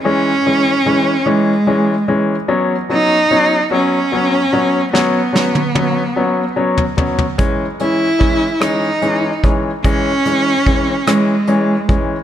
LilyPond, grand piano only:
\new Staff \with { instrumentName = "Grand piano" } { \clef bass \time 6/8 \key cis \minor \tempo 4. = 49 <e gis cis'>8 <e gis cis'>8 <e gis cis'>8 <e gis cis'>8 <e gis cis'>8 <e gis cis'>8 | <fis b cis'>8 <fis b cis'>8 <fis b cis'>8 <fis b cis'>8 <fis b cis'>8 <fis b cis'>8 | <fis b cis'>8 <fis b cis'>8 <fis b cis'>8 <fis b cis'>8 <fis b cis'>8 <fis b cis'>8 | <e gis cis'>8 <e gis cis'>8 <e gis cis'>8 <e gis cis'>8 <e gis cis'>8 <e gis cis'>8 |
<e gis cis'>8 <e gis cis'>8 <e gis cis'>8 <e gis cis'>8 <e gis cis'>8 <e gis cis'>8 | }